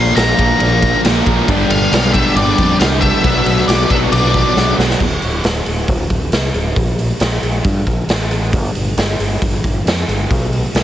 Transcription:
Already playing: fingered electric bass A#1, distorted electric guitar A#2 F3 A#3 D4 F4 A#4, tonewheel organ A#4 D5 F5, lead electric guitar C6
0.16 fingered electric bass A#1, distorted electric guitar A#3 D4 F4 A#4, lead electric guitar A#5, snare, ride
0.38 fingered electric bass A#1, distorted electric guitar A#2 F3 A#3 D4 F4 A#4, kick, ride
0.60 fingered electric bass A#1, distorted electric guitar A#2 F3 A#3 D4 F4 A#4, ride
0.82 distorted electric guitar A#3 D4 F4 A#4, kick, ride
1.04 fingered electric bass A#1, distorted electric guitar A#2 F3 A#3 D4 F4 A#4, snare, ride
1.26 fingered electric bass A#1, distorted electric guitar A#3 D4 F4 A#4, kick, ride
1.47 fingered electric bass G1, distorted electric guitar G2 D3 G3 B3, tonewheel organ B4 D5 G5, kick, ride
1.51 distorted electric guitar D4 G4
1.70 fingered electric bass G1, distorted electric guitar G3 B3 D4 G4, lead electric guitar F5, ride
1.92 fingered electric bass B1, distorted electric guitar G3 B3 D4 G4, snare, ride
2.13 distorted electric guitar G2 D3 G3 B3 D4 G4, lead electric guitar E5, kick, ride
2.36 fingered electric bass G1, distorted electric guitar G2 D3 G3 B3 D4 G4, lead electric guitar D5, ride
2.58 fingered electric bass F2, distorted electric guitar G3 B3 D4 G4, kick, ride
2.80 fingered electric bass C2, distorted electric guitar G2 D3 G3 B3 D4 G4, lead electric guitar F5, snare, ride
3.01 distorted electric guitar G3 B3 D4 G4, lead electric guitar E5, kick, ride
3.23 fingered electric bass B1, distorted electric guitar B2 F#3 B3 D4 F#4 B4, tonewheel organ D5 F#5, kick, ride
3.46 fingered electric bass B1, distorted electric guitar B3 D4 F#4 B4, ride
3.67 fingered electric bass B1, distorted electric guitar B3 D4 F#4 B4, lead electric guitar D5, snare, ride
3.90 fingered electric bass B1, distorted electric guitar B2 F#3 B3 D4 F#4 B4, lead electric guitar E5, kick, ride
4.12 fingered electric bass B1, distorted electric guitar B2 F#3 B3 D4 F#4 B4, lead electric guitar D5, ride
4.33 distorted electric guitar B3 D4 F#4 B4, kick, ride
4.56 fingered electric bass B1, distorted electric guitar B2 F#3 B3 D4 F#4 B4, snare
4.77 fingered electric bass B1, distorted electric guitar B3 D4 F#4 B4, snare
4.91 snare
5.00 fingered electric bass D1, kick, crash
5.22 fingered electric bass D1, open hi-hat
5.44 fingered electric bass D1, snare, open hi-hat
5.66 fingered electric bass D1, open hi-hat
5.88 fingered electric bass D1, kick, open hi-hat
6.10 fingered electric bass D1, kick, open hi-hat
6.32 fingered electric bass C2, snare, open hi-hat
6.54 fingered electric bass D1, open hi-hat
6.76 fingered electric bass A#1, kick, open hi-hat
6.99 open hi-hat
7.20 fingered electric bass A#1, snare, open hi-hat
7.42 fingered electric bass A#1, open hi-hat
7.65 fingered electric bass G2, kick, open hi-hat
7.87 fingered electric bass A#1, kick, open hi-hat
8.08 fingered electric bass A1, snare, open hi-hat
8.31 open hi-hat
8.53 fingered electric bass G1, kick, open hi-hat
8.75 fingered electric bass G1, open hi-hat
8.97 fingered electric bass G1, snare, open hi-hat
9.19 fingered electric bass G1, open hi-hat
9.42 fingered electric bass G1, kick, open hi-hat
9.64 fingered electric bass G1, kick, open hi-hat
9.86 fingered electric bass F2, snare, open hi-hat
10.08 fingered electric bass G1, open hi-hat
10.31 fingered electric bass B1, kick, open hi-hat
10.53 open hi-hat
10.75 fingered electric bass B1, snare, open hi-hat

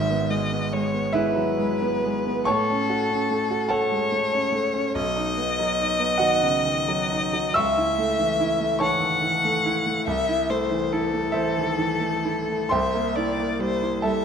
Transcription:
Already playing: grand piano G#1 G#2, violin E5
0.10 grand piano B3
0.30 grand piano G#3, violin D#5
0.52 grand piano B3
0.72 grand piano G#3, violin C#5
0.94 grand piano B3
1.13 grand piano G#3 E4 B4 E5, violin B4
1.36 grand piano F#3
1.58 grand piano G#3
1.82 grand piano B3
2.04 grand piano G#3
2.27 grand piano B3
2.44 grand piano A2 C#5 A5 C#6, violin A4
2.70 grand piano C#4
2.90 grand piano F#4
3.11 grand piano C#4
3.30 grand piano A3
3.51 grand piano F#4
3.69 grand piano A3 A4 F#5 A5, violin C#5
3.92 grand piano G#3
4.12 grand piano A3
4.33 grand piano C#4
4.52 grand piano A3
4.74 grand piano C#4
4.95 grand piano B1, violin D#5
5.16 grand piano D#4
5.37 grand piano B3
5.59 grand piano F#3
5.80 grand piano D#4
5.99 grand piano B3
6.18 grand piano D#3 F#4 D#5 F#5
6.43 grand piano C#3
6.65 grand piano D#3
6.88 grand piano F#3
7.12 grand piano D#4
7.33 grand piano F#3
7.54 grand piano C#2 E5 C#6 E6, violin E5
7.77 grand piano E4
7.99 grand piano A3
8.19 grand piano E3
8.40 grand piano E4
8.61 grand piano A3
8.79 grand piano E3 C#5 A5 C#6, violin F#5
9.00 grand piano D#3
9.22 grand piano E3
9.45 grand piano A3
9.66 grand piano E4
9.86 grand piano A3
10.07 grand piano C2, violin E5
10.29 grand piano E4
10.50 grand piano A3, violin C5
10.71 grand piano E3
10.92 grand piano E4, violin A4
11.14 grand piano A3
11.32 grand piano E3 E4 C5 E5
11.57 grand piano D#3
11.78 grand piano E3
12.01 grand piano A3
12.25 grand piano E4
12.49 grand piano A3
12.69 grand piano C2 C5 G5 C6, violin E5
12.94 grand piano A#3
13.16 grand piano E4, violin D5
13.38 grand piano A#3
13.59 grand piano G3, violin C5
13.82 grand piano E4
14.02 grand piano G3 A4 E5 A5, violin E5

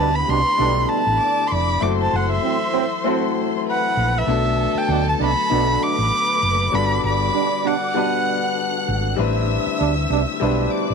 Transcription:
Already playing: fingered electric bass D2, trombone section B2 G3 D4, tonewheel organ D3 A3 D4 E4 G4, string section B3 B5, grand piano C4 D4 E4 G4 B4
0.00 erhu A5
0.15 erhu B5
0.28 fingered electric bass C2, trombone section B2 G3 D4, erhu C6
0.57 fingered electric bass B1, trombone section B2 G3 D4, grand piano B3 D4 E4 G4 A4
0.90 erhu A5
1.07 fingered electric bass A1
1.19 string section D5 D6
1.47 erhu C6
1.52 fingered electric bass F1, erhu B5
1.80 fingered electric bass F#1, tonewheel organ E3 F#3 A4, grand piano A3 C4 E4 F#4 A4, string section C5 C6, erhu D6
2.02 erhu A5
2.13 fingered electric bass F#1, erhu F#5
2.32 erhu E5
2.43 trombone section A2 F#3 C4
2.74 trombone section A2 F#3 C4
3.04 trombone section A2 F#3 C4, grand piano A3 C4 E4 F#4 A4
3.66 string section B4 B5
3.71 erhu F#5
3.97 fingered electric bass A#1
4.18 erhu E5
4.27 fingered electric bass B1, tonewheel organ D3 D4, grand piano F#3 A3 B3 D4 A4, string section A4 A5
4.75 erhu G5, muted fingered electric bass stroke
4.89 fingered electric bass D2, trombone section B2 A3 D4
5.09 erhu A5
5.20 fingered electric bass C2, trombone section B2 A3 D4, erhu B5
5.50 fingered electric bass B1, trombone section B2 A3 D4, grand piano A3 B3 D4 F#4 A4
5.81 string section B4 B5, erhu D6
5.98 fingered electric bass A1
6.43 fingered electric bass F#1
6.72 fingered electric bass G1, grand piano G3 B3 D4 F#4 A4, tonewheel organ G3 F#4, string section D5 D6, erhu B5
7.04 fingered electric bass G1, erhu B5
7.34 trombone section B2 G3 D4
7.64 trombone section B2 G3 D4, erhu F#5
7.94 trombone section B2 G3 D4, grand piano G3 B3 D4 F#4 B4, string section F#5 F#6
8.88 fingered electric bass G#1
9.16 fingered electric bass A1, grand piano G3 C4 D4 E4 B4, tonewheel organ A3 E4 G4, string section E5 E6
9.67 muted fingered electric bass stroke
9.79 fingered electric bass D2, trombone section B2 G3 D4
10.10 fingered electric bass C2, trombone section B2 G3 D4
10.40 fingered electric bass B1, trombone section B2 G3 D4, grand piano G3 D4 E4 B4 C5
10.72 string section D5 D6
10.90 fingered electric bass A1

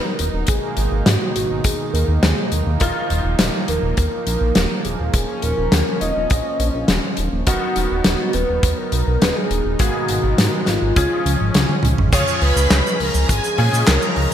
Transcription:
Already playing: analog synth pad F#3 B3 D#4
0.05 soft synth lead A#4
0.19 analog synth bass D#1, closed hi-hat
0.33 analog synth bass D#1
0.47 analog synth bass G#1, analog synth pad B2 D#3 G#3 A#3, soft synth lead G#4, kick, closed hi-hat
0.77 analog synth bass G#1, closed hi-hat
0.92 analog synth bass G#1
1.06 analog synth bass G#2, soft synth lead F#4, snare, closed hi-hat
1.35 analog synth bass G#1, soft synth lead F#4, closed hi-hat
1.50 analog synth bass G#1
1.64 analog synth bass D#2, soft synth lead G#4, kick, closed hi-hat
1.94 analog synth bass D#2, soft synth lead A#4, closed hi-hat
2.08 analog synth bass D#2
2.23 analog synth bass D#2, soft synth lead G#4, snare, closed hi-hat
2.52 analog synth bass D#2, closed hi-hat
2.66 analog synth bass D#2
2.80 analog synth bass D#1, grand piano D#3 A#3 D#4 F4, analog synth pad F3, kick, closed hi-hat
3.10 analog synth bass D#1, closed hi-hat
3.24 analog synth bass D#1
3.39 analog synth bass D#1, snare, closed hi-hat
3.68 analog synth bass D#1, soft synth lead A#4, closed hi-hat
3.83 analog synth bass D#1
3.97 analog synth bass D#2, soft synth lead A#4, kick, closed hi-hat
4.27 analog synth bass A#1, closed hi-hat
4.41 analog synth bass A#1
4.55 analog synth bass D#1, snare, closed hi-hat
4.85 analog synth bass D#1, soft synth lead G#4, closed hi-hat
4.99 analog synth bass D#1
5.14 analog synth bass D#1, analog synth pad C#4, kick, closed hi-hat
5.42 analog synth bass D#1, soft synth lead A#4, closed hi-hat
5.58 analog synth bass D#1
5.72 analog synth bass D#2, snare, closed hi-hat
6.01 analog synth bass D#1, soft synth lead D#5, closed hi-hat
6.16 analog synth bass D#1
6.30 analog synth bass A#1, kick, closed hi-hat
6.59 analog synth bass A#1, closed hi-hat
6.74 analog synth bass A#1
6.88 analog synth bass D#1, snare, closed hi-hat
7.17 analog synth bass D#1, closed hi-hat
7.33 analog synth bass D#1
7.47 analog synth bass D#1, grand piano D#3 B3 D#4 F#4, analog synth pad F#3 B3 D#4, soft synth lead F#4, kick, closed hi-hat
7.76 analog synth bass D#1, closed hi-hat
7.91 analog synth bass D#1
8.04 analog synth bass D#1, snare, closed hi-hat
8.33 analog synth bass D#1, soft synth lead B4, closed hi-hat
8.49 analog synth bass D#1
8.63 analog synth bass D#2, kick, closed hi-hat
8.78 soft synth lead A#4
8.92 analog synth bass B1, closed hi-hat
9.07 analog synth bass B1
9.21 analog synth bass D#1, soft synth lead B4, snare, closed hi-hat
9.36 soft synth lead G#4
9.51 analog synth bass D#1, closed hi-hat
9.65 analog synth bass D#1
9.79 analog synth bass G#1, grand piano G#2 A#3 B3 G#4, analog synth pad B2 D#3 G#3 A#4, soft synth lead F#4, kick, closed hi-hat
10.08 analog synth bass G#1, closed hi-hat
10.24 analog synth bass G#1
10.38 analog synth bass G#2, snare, closed hi-hat
10.66 analog synth bass G#1, soft synth lead F4, snare, closed hi-hat
10.82 analog synth bass G#1
10.96 analog synth bass C#2, grand piano C#3 C#4 F4 G#4, analog synth pad F3 C#4, kick, closed hi-hat
11.26 analog synth bass C#2, closed hi-hat
11.40 analog synth bass G#1
11.54 analog synth bass C#2, snare, closed hi-hat
11.69 high tom
11.83 analog synth bass C#2, closed hi-hat, mid tom
11.98 analog synth bass G#1, mid tom
12.13 analog synth bass C#2, grand piano C#3 C#4 F4 G#4, analog synth pad F3 G#3 C#4, soft synth lead C#5, string machine C#6, kick, closed hi-hat, crash, shaker
12.28 shaker
12.41 analog synth bass C#2, soft synth lead B4, string machine B5, open hi-hat
12.56 analog synth bass C#2, shaker
12.70 analog synth bass C#2, snare, clap, closed hi-hat, shaker
12.87 shaker
13.00 analog synth bass C#2, soft synth lead A#4, string machine A#5, open hi-hat
13.14 analog synth bass C#2, shaker
13.29 analog synth bass G#1, soft synth lead G#4, string machine G#5, kick, closed hi-hat, shaker
13.44 shaker
13.58 analog synth bass A#2, grand piano C#3 C#4 F4 G#4, open hi-hat
13.73 analog synth bass A#2, shaker
13.87 analog synth bass C#2, soft synth lead A#4, string machine A#5, snare, clap, closed hi-hat, shaker
14.02 shaker
14.16 analog synth bass C#2, open hi-hat

